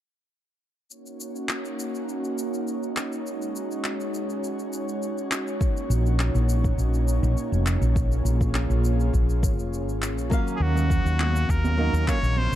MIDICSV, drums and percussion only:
0, 0, Header, 1, 2, 480
1, 0, Start_track
1, 0, Tempo, 588235
1, 735, Time_signature, 4, 2, 24, 8
1, 10243, End_track
2, 0, Start_track
2, 0, Title_t, "Drums"
2, 739, Note_on_c, 9, 69, 39
2, 821, Note_off_c, 9, 69, 0
2, 867, Note_on_c, 9, 69, 26
2, 949, Note_off_c, 9, 69, 0
2, 981, Note_on_c, 9, 69, 62
2, 1063, Note_off_c, 9, 69, 0
2, 1107, Note_on_c, 9, 69, 27
2, 1188, Note_off_c, 9, 69, 0
2, 1215, Note_on_c, 9, 39, 72
2, 1220, Note_on_c, 9, 69, 39
2, 1297, Note_off_c, 9, 39, 0
2, 1302, Note_off_c, 9, 69, 0
2, 1347, Note_on_c, 9, 69, 29
2, 1429, Note_off_c, 9, 69, 0
2, 1464, Note_on_c, 9, 69, 63
2, 1545, Note_off_c, 9, 69, 0
2, 1589, Note_on_c, 9, 69, 28
2, 1671, Note_off_c, 9, 69, 0
2, 1704, Note_on_c, 9, 69, 39
2, 1786, Note_off_c, 9, 69, 0
2, 1830, Note_on_c, 9, 69, 28
2, 1912, Note_off_c, 9, 69, 0
2, 1944, Note_on_c, 9, 69, 68
2, 2026, Note_off_c, 9, 69, 0
2, 2070, Note_on_c, 9, 69, 31
2, 2152, Note_off_c, 9, 69, 0
2, 2184, Note_on_c, 9, 69, 37
2, 2266, Note_off_c, 9, 69, 0
2, 2310, Note_on_c, 9, 69, 24
2, 2391, Note_off_c, 9, 69, 0
2, 2420, Note_on_c, 9, 39, 65
2, 2425, Note_on_c, 9, 69, 62
2, 2502, Note_off_c, 9, 39, 0
2, 2506, Note_off_c, 9, 69, 0
2, 2549, Note_on_c, 9, 69, 26
2, 2631, Note_off_c, 9, 69, 0
2, 2665, Note_on_c, 9, 69, 39
2, 2746, Note_off_c, 9, 69, 0
2, 2790, Note_on_c, 9, 69, 30
2, 2872, Note_off_c, 9, 69, 0
2, 2903, Note_on_c, 9, 69, 68
2, 2985, Note_off_c, 9, 69, 0
2, 3030, Note_on_c, 9, 69, 30
2, 3111, Note_off_c, 9, 69, 0
2, 3136, Note_on_c, 9, 39, 68
2, 3141, Note_on_c, 9, 69, 39
2, 3218, Note_off_c, 9, 39, 0
2, 3222, Note_off_c, 9, 69, 0
2, 3268, Note_on_c, 9, 69, 28
2, 3349, Note_off_c, 9, 69, 0
2, 3381, Note_on_c, 9, 69, 66
2, 3462, Note_off_c, 9, 69, 0
2, 3506, Note_on_c, 9, 69, 31
2, 3588, Note_off_c, 9, 69, 0
2, 3621, Note_on_c, 9, 69, 40
2, 3703, Note_off_c, 9, 69, 0
2, 3747, Note_on_c, 9, 69, 30
2, 3828, Note_off_c, 9, 69, 0
2, 3859, Note_on_c, 9, 69, 76
2, 3940, Note_off_c, 9, 69, 0
2, 3986, Note_on_c, 9, 69, 32
2, 4067, Note_off_c, 9, 69, 0
2, 4100, Note_on_c, 9, 69, 42
2, 4182, Note_off_c, 9, 69, 0
2, 4226, Note_on_c, 9, 69, 26
2, 4307, Note_off_c, 9, 69, 0
2, 4337, Note_on_c, 9, 39, 75
2, 4342, Note_on_c, 9, 69, 73
2, 4418, Note_off_c, 9, 39, 0
2, 4423, Note_off_c, 9, 69, 0
2, 4467, Note_on_c, 9, 69, 30
2, 4549, Note_off_c, 9, 69, 0
2, 4576, Note_on_c, 9, 36, 100
2, 4580, Note_on_c, 9, 69, 42
2, 4658, Note_off_c, 9, 36, 0
2, 4661, Note_off_c, 9, 69, 0
2, 4708, Note_on_c, 9, 69, 29
2, 4789, Note_off_c, 9, 69, 0
2, 4821, Note_on_c, 9, 69, 72
2, 4903, Note_off_c, 9, 69, 0
2, 4946, Note_on_c, 9, 69, 30
2, 5028, Note_off_c, 9, 69, 0
2, 5055, Note_on_c, 9, 39, 70
2, 5060, Note_on_c, 9, 69, 42
2, 5137, Note_off_c, 9, 39, 0
2, 5141, Note_off_c, 9, 69, 0
2, 5183, Note_on_c, 9, 69, 29
2, 5265, Note_off_c, 9, 69, 0
2, 5296, Note_on_c, 9, 69, 70
2, 5378, Note_off_c, 9, 69, 0
2, 5421, Note_on_c, 9, 36, 91
2, 5423, Note_on_c, 9, 69, 31
2, 5502, Note_off_c, 9, 36, 0
2, 5505, Note_off_c, 9, 69, 0
2, 5538, Note_on_c, 9, 69, 43
2, 5619, Note_off_c, 9, 69, 0
2, 5662, Note_on_c, 9, 69, 31
2, 5743, Note_off_c, 9, 69, 0
2, 5777, Note_on_c, 9, 69, 79
2, 5859, Note_off_c, 9, 69, 0
2, 5903, Note_on_c, 9, 69, 31
2, 5985, Note_off_c, 9, 69, 0
2, 6018, Note_on_c, 9, 69, 40
2, 6100, Note_off_c, 9, 69, 0
2, 6145, Note_on_c, 9, 69, 28
2, 6227, Note_off_c, 9, 69, 0
2, 6254, Note_on_c, 9, 39, 70
2, 6259, Note_on_c, 9, 69, 73
2, 6336, Note_off_c, 9, 39, 0
2, 6340, Note_off_c, 9, 69, 0
2, 6383, Note_on_c, 9, 69, 33
2, 6465, Note_off_c, 9, 69, 0
2, 6495, Note_on_c, 9, 36, 103
2, 6498, Note_on_c, 9, 69, 39
2, 6576, Note_off_c, 9, 36, 0
2, 6580, Note_off_c, 9, 69, 0
2, 6624, Note_on_c, 9, 69, 30
2, 6706, Note_off_c, 9, 69, 0
2, 6739, Note_on_c, 9, 69, 70
2, 6820, Note_off_c, 9, 69, 0
2, 6860, Note_on_c, 9, 36, 90
2, 6865, Note_on_c, 9, 69, 30
2, 6942, Note_off_c, 9, 36, 0
2, 6947, Note_off_c, 9, 69, 0
2, 6973, Note_on_c, 9, 39, 69
2, 6978, Note_on_c, 9, 69, 41
2, 7055, Note_off_c, 9, 39, 0
2, 7059, Note_off_c, 9, 69, 0
2, 7103, Note_on_c, 9, 69, 30
2, 7185, Note_off_c, 9, 69, 0
2, 7218, Note_on_c, 9, 69, 73
2, 7299, Note_off_c, 9, 69, 0
2, 7346, Note_on_c, 9, 69, 29
2, 7427, Note_off_c, 9, 69, 0
2, 7455, Note_on_c, 9, 36, 57
2, 7459, Note_on_c, 9, 69, 41
2, 7537, Note_off_c, 9, 36, 0
2, 7540, Note_off_c, 9, 69, 0
2, 7585, Note_on_c, 9, 69, 31
2, 7666, Note_off_c, 9, 69, 0
2, 7695, Note_on_c, 9, 36, 97
2, 7700, Note_on_c, 9, 69, 75
2, 7777, Note_off_c, 9, 36, 0
2, 7781, Note_off_c, 9, 69, 0
2, 7827, Note_on_c, 9, 69, 32
2, 7909, Note_off_c, 9, 69, 0
2, 7943, Note_on_c, 9, 69, 40
2, 8025, Note_off_c, 9, 69, 0
2, 8070, Note_on_c, 9, 69, 27
2, 8151, Note_off_c, 9, 69, 0
2, 8178, Note_on_c, 9, 39, 65
2, 8183, Note_on_c, 9, 69, 75
2, 8260, Note_off_c, 9, 39, 0
2, 8265, Note_off_c, 9, 69, 0
2, 8309, Note_on_c, 9, 69, 31
2, 8390, Note_off_c, 9, 69, 0
2, 8415, Note_on_c, 9, 36, 89
2, 8423, Note_on_c, 9, 69, 51
2, 8497, Note_off_c, 9, 36, 0
2, 8505, Note_off_c, 9, 69, 0
2, 8548, Note_on_c, 9, 69, 30
2, 8630, Note_off_c, 9, 69, 0
2, 8777, Note_on_c, 9, 64, 76
2, 8789, Note_on_c, 9, 69, 60
2, 8858, Note_off_c, 9, 64, 0
2, 8871, Note_off_c, 9, 69, 0
2, 8895, Note_on_c, 9, 36, 98
2, 8903, Note_on_c, 9, 69, 49
2, 8977, Note_off_c, 9, 36, 0
2, 8984, Note_off_c, 9, 69, 0
2, 9029, Note_on_c, 9, 69, 32
2, 9110, Note_off_c, 9, 69, 0
2, 9135, Note_on_c, 9, 64, 64
2, 9138, Note_on_c, 9, 39, 73
2, 9138, Note_on_c, 9, 63, 55
2, 9216, Note_off_c, 9, 64, 0
2, 9220, Note_off_c, 9, 39, 0
2, 9220, Note_off_c, 9, 63, 0
2, 9269, Note_on_c, 9, 69, 63
2, 9350, Note_off_c, 9, 69, 0
2, 9375, Note_on_c, 9, 36, 93
2, 9384, Note_on_c, 9, 69, 54
2, 9457, Note_off_c, 9, 36, 0
2, 9465, Note_off_c, 9, 69, 0
2, 9502, Note_on_c, 9, 63, 91
2, 9506, Note_on_c, 9, 69, 32
2, 9584, Note_off_c, 9, 63, 0
2, 9587, Note_off_c, 9, 69, 0
2, 9746, Note_on_c, 9, 69, 66
2, 9828, Note_off_c, 9, 69, 0
2, 9855, Note_on_c, 9, 36, 96
2, 9857, Note_on_c, 9, 39, 77
2, 9862, Note_on_c, 9, 69, 53
2, 9937, Note_off_c, 9, 36, 0
2, 9939, Note_off_c, 9, 39, 0
2, 9943, Note_off_c, 9, 69, 0
2, 9987, Note_on_c, 9, 69, 29
2, 10068, Note_off_c, 9, 69, 0
2, 10091, Note_on_c, 9, 63, 60
2, 10173, Note_off_c, 9, 63, 0
2, 10243, End_track
0, 0, End_of_file